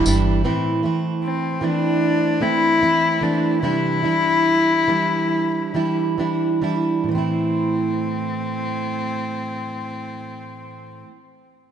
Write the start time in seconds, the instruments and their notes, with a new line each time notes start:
0.06 upright bass G1, steel-string acoustic guitar E3 G3 D4 E4, tambourine
0.44 steel-string acoustic guitar A2 E3 A3 C4 E4
0.83 steel-string acoustic guitar E3 A3 C4 E4
1.24 cello C4
1.61 steel-string acoustic guitar E3 A3 C4 E4, cello D4
2.40 steel-string acoustic guitar E3 A3 C4 E4, cello E4
2.80 steel-string acoustic guitar E3 A3 C4 E4
3.21 steel-string acoustic guitar E3 A3 C4 E4, cello D4
3.63 steel-string acoustic guitar C3 E3 G3 D4 E4, cello E4
4.03 steel-string acoustic guitar E3 G3 D4 E4
4.87 steel-string acoustic guitar E3 G3 D4 E4
5.74 steel-string acoustic guitar E3 G3 D4 E4
6.18 steel-string acoustic guitar E3 G3 D4 E4
6.62 steel-string acoustic guitar E3 G3 D4 E4
7.04 steel-string acoustic guitar A2
7.08 steel-string acoustic guitar E3 A3, cello C4
7.15 steel-string acoustic guitar C4 E4